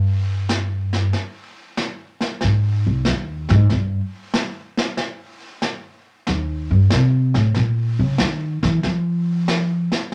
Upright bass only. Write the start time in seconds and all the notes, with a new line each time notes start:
Already playing: G2
2.44 G#2
2.87 C2
3.08 D#2
3.50 G#2
3.72 G2
6.29 D#2
6.71 G2
6.93 C3
7.35 A2
7.57 A#2
7.99 C#3
8.21 D#3
8.63 E3
8.84 F3